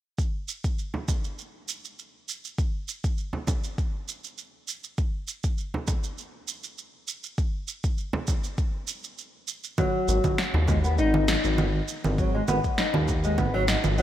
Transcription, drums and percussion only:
0.18 kick loud
0.18 shaker soft
0.48 shaker medium
0.64 kick medium
0.64 shaker soft
0.79 shaker soft
0.94 frame drum medium
1.08 kick loud
1.08 frame drum medium
1.08 shaker medium
1.24 shaker soft
1.39 shaker soft
1.69 shaker medium
1.85 shaker soft
1.99 shaker soft
2.29 shaker medium
2.45 shaker soft
2.58 kick loud
2.58 shaker soft
2.88 shaker medium
3.04 kick loud
3.04 shaker soft
3.18 shaker soft
3.33 frame drum medium
3.47 kick loud
3.47 frame drum medium
3.47 shaker medium
3.64 shaker soft
3.78 kick medium
3.78 shaker soft
4.08 shaker medium
4.24 shaker soft
4.38 shaker soft
4.68 shaker medium
4.84 shaker soft
4.98 kick loud
4.98 shaker soft
5.28 shaker medium
5.44 kick loud
5.44 shaker soft
5.58 shaker soft
5.74 frame drum medium
5.87 kick loud
5.87 frame drum medium
5.87 shaker medium
6.04 shaker soft
6.18 shaker soft
6.48 shaker medium
6.64 shaker soft
6.78 shaker soft
7.08 shaker medium
7.24 shaker soft
7.38 kick loud
7.38 shaker soft
7.68 shaker medium
7.84 kick medium
7.84 shaker soft
7.98 shaker soft
8.13 frame drum medium
8.28 kick loud
8.28 frame drum medium
8.28 shaker medium
8.44 shaker soft
8.58 kick medium
8.58 shaker soft
8.88 shaker medium
9.04 shaker soft
9.18 shaker soft
9.48 shaker medium
9.64 shaker soft
9.78 kick loud
9.78 low conga medium
9.78 shaker soft
10.08 shaker medium
10.24 kick medium
10.24 low conga medium
10.24 shaker soft
10.38 snare medium
10.38 shaker soft
10.54 frame drum medium
10.67 kick loud
10.67 frame drum medium
10.67 low conga medium
10.67 shaker medium
10.84 shaker soft
10.98 shaker soft
11.14 low conga medium
11.28 snare medium
11.28 shaker medium
11.44 shaker soft
11.58 low conga medium
11.58 shaker soft
11.88 shaker medium
12.04 low conga medium
12.04 shaker soft
12.18 kick loud
12.18 shaker soft
12.48 low conga medium
12.48 shaker medium
12.64 kick medium
12.64 shaker soft
12.78 snare medium
12.78 shaker soft
12.94 low conga medium
12.94 frame drum medium
13.08 kick medium
13.08 frame drum medium
13.08 shaker medium
13.24 shaker soft
13.38 kick medium
13.38 low conga medium
13.38 shaker soft
13.68 snare medium
13.68 shaker medium
13.84 low conga medium
13.84 shaker soft
13.98 shaker soft

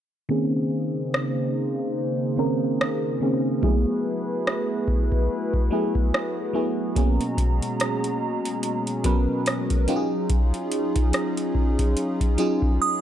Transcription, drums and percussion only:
1.14 cross-stick medium
2.81 cross-stick loud
3.63 kick loud
4.47 cross-stick medium
4.88 kick medium
5.12 kick medium
5.54 kick medium
5.95 kick medium
6.14 cross-stick loud
6.96 kick loud
6.96 closed hi-hat medium
7.21 closed hi-hat soft
7.38 kick medium
7.38 closed hi-hat medium
7.62 closed hi-hat soft
7.80 cross-stick medium
7.80 closed hi-hat medium
8.04 closed hi-hat soft
8.45 closed hi-hat medium
8.63 closed hi-hat medium
8.87 closed hi-hat soft
9.04 kick medium
9.04 closed hi-hat medium
9.46 cross-stick loud
9.46 closed hi-hat medium
9.70 kick medium
9.70 closed hi-hat soft
9.88 closed hi-hat soft
10.30 kick loud
10.30 closed hi-hat medium
10.54 closed hi-hat soft
10.72 closed hi-hat medium
10.96 kick medium
10.96 closed hi-hat soft
11.13 cross-stick medium
11.13 closed hi-hat medium
11.37 closed hi-hat medium
11.55 kick medium
11.79 kick medium
11.79 closed hi-hat soft
11.97 closed hi-hat medium
12.21 kick medium
12.21 closed hi-hat soft
12.38 closed hi-hat medium
12.62 kick medium

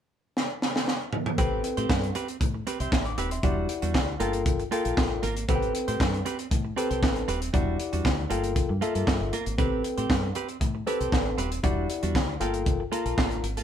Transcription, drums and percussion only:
0.37 snare medium
0.62 snare medium
0.76 snare medium
0.88 snare medium
1.13 mid tom medium
1.26 mid tom loud
1.38 kick loud
1.38 closed hi-hat medium
1.64 closed hi-hat medium
1.77 closed hi-hat medium
1.90 kick loud
1.90 snare loud
1.90 clap medium
2.04 closed hi-hat soft
2.15 closed hi-hat medium
2.28 closed hi-hat soft
2.41 kick loud
2.41 closed hi-hat medium
2.67 closed hi-hat medium
2.80 closed hi-hat soft
2.92 kick loud
2.92 snare loud
2.92 clap medium
3.05 closed hi-hat soft
3.18 closed hi-hat medium
3.31 closed hi-hat medium
3.43 kick loud
3.43 closed hi-hat medium
3.69 closed hi-hat medium
3.82 closed hi-hat medium
3.95 kick loud
3.95 snare loud
3.95 clap medium
4.20 closed hi-hat medium
4.33 closed hi-hat soft
4.46 kick loud
4.46 closed hi-hat medium
4.60 closed hi-hat soft
4.72 closed hi-hat medium
4.85 closed hi-hat soft
4.97 kick loud
4.97 snare loud
4.97 clap medium
5.23 closed hi-hat medium
5.37 closed hi-hat medium
5.49 kick loud
5.49 closed hi-hat medium
5.62 closed hi-hat soft
5.75 closed hi-hat medium
5.88 closed hi-hat medium
6.00 kick loud
6.00 snare loud
6.00 clap medium
6.14 closed hi-hat soft
6.26 closed hi-hat medium
6.39 closed hi-hat soft
6.51 kick loud
6.51 closed hi-hat medium
6.78 closed hi-hat medium
6.91 closed hi-hat soft
7.03 kick loud
7.03 snare loud
7.03 clap medium
7.16 closed hi-hat soft
7.28 closed hi-hat medium
7.42 closed hi-hat medium
7.54 kick loud
7.54 closed hi-hat medium
7.80 closed hi-hat medium
7.93 closed hi-hat soft
8.05 kick loud
8.05 snare loud
8.05 clap medium
8.31 closed hi-hat medium
8.44 closed hi-hat soft
8.56 kick medium
8.56 closed hi-hat medium
8.82 closed hi-hat medium
8.95 closed hi-hat soft
9.07 kick loud
9.07 snare loud
9.07 clap medium
9.33 closed hi-hat medium
9.46 closed hi-hat medium
9.58 kick loud
9.58 closed hi-hat medium
9.84 closed hi-hat medium
9.98 closed hi-hat medium
10.10 kick loud
10.10 snare loud
10.10 clap medium
10.35 closed hi-hat medium
10.49 closed hi-hat soft
10.61 kick medium
10.61 closed hi-hat medium
10.87 closed hi-hat medium
11.01 closed hi-hat soft
11.12 kick loud
11.12 snare loud
11.12 clap medium
11.38 closed hi-hat medium
11.52 closed hi-hat medium
11.64 kick loud
11.64 closed hi-hat medium
11.90 closed hi-hat medium
12.03 closed hi-hat soft
12.15 kick loud
12.15 snare loud
12.15 clap medium
12.41 closed hi-hat medium
12.54 closed hi-hat soft
12.66 kick loud
12.66 closed hi-hat medium
12.93 closed hi-hat medium
13.06 closed hi-hat soft
13.18 kick loud
13.18 snare loud
13.18 clap medium
13.31 closed hi-hat soft
13.44 closed hi-hat medium
13.57 closed hi-hat medium

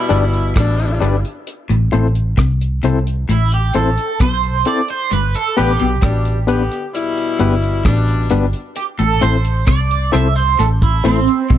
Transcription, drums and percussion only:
0.10 closed hi-hat medium
0.34 closed hi-hat soft
0.56 kick loud
0.56 cross-stick loud
0.56 closed hi-hat medium
0.80 closed hi-hat soft
1.02 closed hi-hat medium
1.25 closed hi-hat medium
1.47 closed hi-hat medium
1.70 closed hi-hat medium
1.93 closed hi-hat medium
2.15 closed hi-hat medium
2.38 kick loud
2.38 cross-stick loud
2.38 closed hi-hat medium
2.61 closed hi-hat medium
2.83 closed hi-hat medium
3.07 closed hi-hat medium
3.29 closed hi-hat medium
3.52 closed hi-hat medium
3.74 closed hi-hat medium
3.98 closed hi-hat soft
4.20 kick loud
4.20 cross-stick medium
4.20 closed hi-hat medium
4.43 closed hi-hat soft
4.65 closed hi-hat medium
4.88 closed hi-hat medium
5.11 closed hi-hat medium
5.35 closed hi-hat medium
5.57 closed hi-hat medium
5.80 closed hi-hat medium
6.02 kick loud
6.02 cross-stick loud
6.02 closed hi-hat medium
6.25 closed hi-hat medium
6.48 closed hi-hat medium
6.71 closed hi-hat medium
6.95 closed hi-hat loud
7.17 closed hi-hat medium
7.39 closed hi-hat medium
7.63 closed hi-hat soft
7.85 kick loud
7.85 cross-stick loud
7.85 closed hi-hat medium
8.08 closed hi-hat soft
8.30 closed hi-hat medium
8.53 closed hi-hat medium
8.76 closed hi-hat medium
8.99 closed hi-hat medium
9.22 closed hi-hat medium
9.45 closed hi-hat medium
9.67 kick loud
9.67 cross-stick loud
9.67 closed hi-hat medium
9.91 closed hi-hat medium
10.13 cross-stick medium
10.13 closed hi-hat medium
10.37 closed hi-hat medium
10.60 closed hi-hat medium
10.82 kick medium
10.82 closed hi-hat medium
11.05 closed hi-hat medium
11.28 closed hi-hat soft
11.50 kick loud

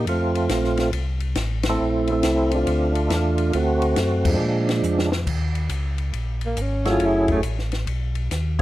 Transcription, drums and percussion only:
0.07 ride medium
0.35 ride soft
0.49 snare medium
0.49 hi-hat pedal medium
0.49 ride medium
0.64 snare soft
0.77 snare soft
0.77 ride soft
0.93 ride medium
1.20 ride soft
1.35 snare medium
1.35 hi-hat pedal medium
1.35 ride medium
1.63 snare medium
1.63 ride medium
2.07 ride soft
2.23 snare medium
2.23 hi-hat pedal medium
2.23 ride medium
2.51 ride medium
2.67 ride medium
2.95 ride soft
3.10 snare medium
3.10 hi-hat pedal medium
3.10 ride medium
3.38 ride medium
3.53 ride medium
3.82 ride soft
3.96 snare medium
3.96 hi-hat pedal soft
3.96 ride medium
4.25 kick medium
4.25 crash medium
4.69 snare medium
4.69 ride soft
4.83 hi-hat pedal medium
4.99 snare medium
5.12 snare medium
5.27 kick medium
5.27 crash medium
5.55 ride soft
5.69 hi-hat pedal soft
5.69 ride medium
5.98 ride soft
6.13 ride medium
6.41 ride soft
6.57 hi-hat pedal medium
6.57 ride medium
6.85 snare soft
6.85 ride soft
7.00 ride medium
7.28 kick medium
7.28 ride soft
7.43 hi-hat pedal medium
7.43 ride medium
7.59 snare soft
7.72 snare soft
7.72 ride soft
7.87 ride medium
8.15 ride soft
8.31 snare soft
8.31 hi-hat pedal medium
8.31 ride medium

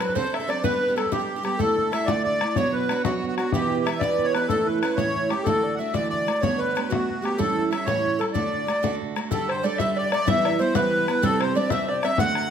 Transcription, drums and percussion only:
0.00 bodhran medium
0.09 bodhran soft
0.16 bodhran medium
0.34 bodhran medium
0.50 bodhran soft
0.64 bodhran medium
0.98 bodhran medium
1.06 bodhran soft
1.12 bodhran medium
1.45 bodhran soft
1.60 bodhran medium
1.78 bodhran soft
1.93 bodhran medium
2.08 bodhran medium
2.26 bodhran soft
2.41 bodhran medium
2.56 bodhran medium
2.74 bodhran soft
2.89 bodhran medium
3.05 bodhran medium
3.23 bodhran soft
3.38 bodhran medium
3.52 bodhran medium
3.71 bodhran soft
3.87 bodhran medium
4.01 bodhran medium
4.19 bodhran soft
4.35 bodhran medium
4.50 bodhran medium
4.68 bodhran soft
4.83 bodhran medium
4.98 bodhran medium
5.16 bodhran soft
5.30 bodhran medium
5.47 bodhran medium
5.94 bodhran medium
6.13 bodhran soft
6.28 bodhran medium
6.43 bodhran medium
6.61 bodhran soft
6.77 bodhran medium
6.92 bodhran medium
7.10 bodhran soft
7.25 bodhran soft
7.40 bodhran medium
7.58 bodhran soft
7.73 bodhran medium
7.88 bodhran medium
8.06 bodhran soft
8.21 bodhran medium
8.35 bodhran medium
8.54 bodhran soft
8.68 bodhran medium
8.84 bodhran medium
9.02 bodhran soft
9.16 bodhran medium
9.31 bodhran medium
9.50 bodhran soft
9.79 bodhran medium
10.12 bodhran medium
10.28 bodhran medium
10.45 bodhran medium
10.75 bodhran loud
11.08 bodhran medium
11.23 bodhran medium
11.41 bodhran medium
11.70 bodhran medium
12.03 bodhran medium
12.18 bodhran medium
12.35 bodhran medium

